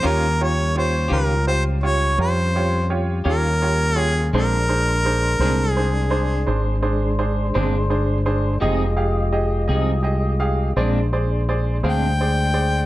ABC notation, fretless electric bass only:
X:1
M:12/8
L:1/8
Q:3/8=56
K:Bbmix
V:1 name="Fretless electric bass" clef=bass
E,,3 _D,,3 F,,3 E,,3 | B,,,3 C,,3 A,,,3 G,,,3 | F,,,3 C,,3 B,,,3 D,,3 |]